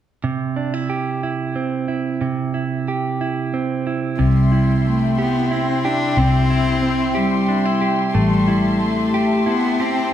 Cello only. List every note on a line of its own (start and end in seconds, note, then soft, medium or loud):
4.20 4.88 G3 medium
4.86 5.19 A3 medium
5.19 5.54 B3 medium
5.53 5.86 C4 medium
5.84 6.19 D4 medium
6.17 7.17 C4 medium
7.16 7.90 G3 medium
8.15 8.82 G3 medium
8.80 9.46 A3 medium
9.48 9.82 B3 medium
9.81 10.13 C4 medium